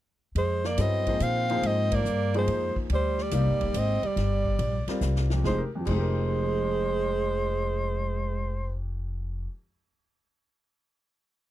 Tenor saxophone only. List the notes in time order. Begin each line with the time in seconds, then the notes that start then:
0.36 G#3
0.65 A#3
0.80 C4
1.20 C4
1.64 C4
1.93 A#3
2.36 G#3
2.93 G3
3.20 G3
3.77 C4
4.04 G3
5.45 G#3
5.87 G#3